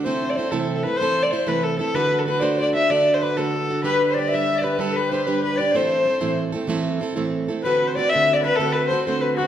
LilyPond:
<<
  \new Staff \with { instrumentName = "Fiddle" } { \time 12/8 \key a \dorian \tempo 4. = 126 c''8. d''16 c''8 a'8. a'16 b'8 c''8. d''16 c''8 b'8 a'8 a'8 | b'8. a'16 b'16. d''32 c''8 d''8 e''8 d''8. c''16 b'8 a'4. | b'8. c''16 d''8 e''8. d''16 b'8 a'8 b'8 c''8 b'8 b'8 d''8 | c''2 r1 |
b'8. c''16 d''8 e''8. d''16 b'8 a'8 b'8 c''8 c''8 b'8 fis'8 | }
  \new Staff \with { instrumentName = "Flute" } { \time 12/8 \key a \dorian r1. | r1. | b'4 d''8 e''8. d''16 b'8 a'8 b'8 c''8 b'8 b'8 d''8 | c''2 r1 |
b'8. c''16 d''8 e''8. d''16 b'8 a'8 b'8 c''8 c''8 b'8 fis'8 | }
  \new Staff \with { instrumentName = "Steel-string acoustic guitar" } { \time 12/8 \key a \dorian <c e a c' e' a'>4 <a c' e' a'>8 <c e a c' e' a'>4 <a c' e' a'>8 <c e a c' e' a'>4 <a c' e' a'>8 <c e a c' e' a'>4 <a c' e' a'>8 | <d a d' fis' a'>4 <a d' fis' a'>8 <d a d' fis' a'>4 <d' fis' a'>8 <d a d' fis' a'>4 <a d' fis' a'>8 <d a d' fis' a'>4 <d' fis' a'>8 | <g d' g' b'>4 <g d' g' b'>8 <g d' g' b'>4 <d' g' b'>8 <g d' g' b'>4 <g d' g' b'>8 <g d' g' b'>4 <d' g' b'>8 | <a, e a c' e' a'>4 <a c' e' a'>8 <a, e a c' e' a'>4 <a c' e' a'>8 <a, e a c' e' a'>4 <a c' e' a'>8 <a, e a c' e' a'>4 <a c' e' a'>8 |
<d a c' fis' a'>4 <a c' fis' a'>8 <d a c' fis' a'>4 <c' fis' a'>8 <d a c' fis' a'>4 <a c' fis' a'>8 <d a c' fis' a'>4 <c' fis' a'>8 | }
>>